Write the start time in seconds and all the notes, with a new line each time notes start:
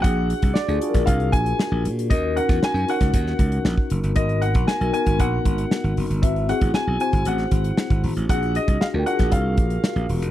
0.02 A#1 D4 F#4 G#4 F#5, kick, closed hi-hat
0.30 closed hi-hat
0.42 C2, kick, closed hi-hat
0.54 D5, snare
0.68 D2 D4 F4 F#4 G#4, closed hi-hat
0.81 D4 F4 F#4 G#4, closed hi-hat
0.89 A#4
0.94 A#1, kick, snare, closed hi-hat
1.06 C2 F5, kick, closed hi-hat
1.20 closed hi-hat
1.32 A#1 G#5, kick, closed hi-hat
1.46 closed hi-hat
1.59 snare
1.72 A#1
1.85 A#2, closed hi-hat
1.99 closed hi-hat
2.10 D#2 C#4 D#4 F#4 A#4 D#5, kick, closed hi-hat
2.36 C#4 D#4 F#4 A#4 F#5, closed hi-hat
2.49 E2, kick, snare, closed hi-hat
2.63 G#5, snare
2.74 F#2, closed hi-hat
2.88 C#4 D#4 F#4 A#4 F#5, closed hi-hat
3.01 C#2, kick, snare, closed hi-hat
3.14 D#2, kick, closed hi-hat
3.27 snare
3.39 C#2, kick, closed hi-hat
3.52 closed hi-hat
3.65 A#1, snare
3.78 kick
3.90 F#1, closed hi-hat
4.04 G1, closed hi-hat
4.16 G#1 B3 D#4 F#4 A#4 D#5, kick, closed hi-hat
4.29 closed hi-hat
4.42 F#5, closed hi-hat
4.55 A#1, kick, closed hi-hat
4.67 G#5, snare
4.81 B1 B3 D#4 F#4 A#4, closed hi-hat
4.93 B3 D#4 F#4 A#4 G#5, closed hi-hat
5.06 G#1, kick, closed hi-hat
5.20 A#1 F#5, kick, closed hi-hat
5.45 G#1, kick, closed hi-hat
5.58 closed hi-hat
5.71 snare
5.84 G#1, closed hi-hat
5.97 F#1, open hi-hat
6.10 G1, closed hi-hat
6.22 G#1 C4 E4 F#4 B4 E5, kick, closed hi-hat
6.36 closed hi-hat
6.48 C4 E4 F#4 G#4 F#5, closed hi-hat
6.61 A1, kick, closed hi-hat
6.74 G#5, snare
6.87 B1
7.00 C4 E4 F#4 C5 G#5, closed hi-hat
7.13 G#1, kick, closed hi-hat
7.25 A1 F#5, closed hi-hat
7.38 snare, closed hi-hat
7.51 G#1, kick, closed hi-hat
7.64 closed hi-hat
7.78 snare
7.90 G#1, kick, closed hi-hat
8.03 G#1, open hi-hat
8.16 A1, closed hi-hat
8.29 A#1 C4 F4 F#4 G#4 F#5, kick, closed hi-hat
8.35 D4
8.43 closed hi-hat
8.55 D#5, closed hi-hat
8.68 C2, kick, closed hi-hat
8.81 F5, snare
8.94 D2 D4 F4 F#4 A#4
8.99 G5
9.06 D4 F4 F#4 G4 F#5, closed hi-hat
9.14 G#4
9.19 A#1, kick, snare, closed hi-hat
9.32 C2 F5, kick, closed hi-hat
9.57 A#1, kick, closed hi-hat
9.70 closed hi-hat
9.84 snare
9.96 A#1, closed hi-hat
10.09 E1, open hi-hat
10.22 F1, closed hi-hat